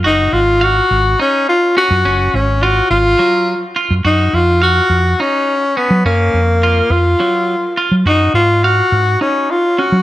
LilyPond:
<<
  \new Staff \with { instrumentName = "Tenor saxophone" } { \time 7/8 \key fis \major \tempo 4 = 105 dis'8 eis'8 fis'4 cis'8 eis'8 fis'8~ | fis'8 cis'8 fis'8 eis'4. r8 | dis'8 eis'8 fis'4 cis'4 b8 | ais4. eis'4. r8 |
dis'8 eis'8 fis'4 cis'8 eis'8 fis'8 | }
  \new Staff \with { instrumentName = "Clean electric guitar" } { \time 7/8 \key fis \major fis'4 eis''4 dis'4 cis'8 | cis'4 eis'4 fis4 eis'8 | fis'4 eis''4 dis'4 cis'8 | cis'4 eis'4 fis4 eis'8 |
fis'4 eis''4 dis'4 cis'8 | }
  \new Staff \with { instrumentName = "Fingered electric bass" } { \clef bass \time 7/8 \key fis \major fis,,8 gis,,4 gis,,8 r4 r16 fis,16 | fis,,8 gis,,4 gis,,8 r4 r16 fis,16 | fis,8 eis,4 eis,8 r4 r16 fis16 | fis,8 eis,4 eis,8 r4 r16 fis16 |
fis,8 gis,4 gis,8 r4 r16 fis16 | }
>>